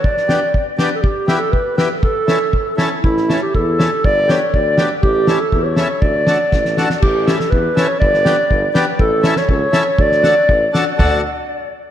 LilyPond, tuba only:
\new Staff \with { instrumentName = "Tuba" } { \clef bass \time 2/4 \key d \major \tempo 4 = 121 r2 | r2 | r2 | a,,4 e,4 |
g,,4 d,4 | a,,4 e,4 | d,4 a,,4 | a,,4 e,8 r8 |
g,,4 g,,8 r8 | a,,4 cis,8 r8 | d,4 a,,8 r8 | d,8 r4. | }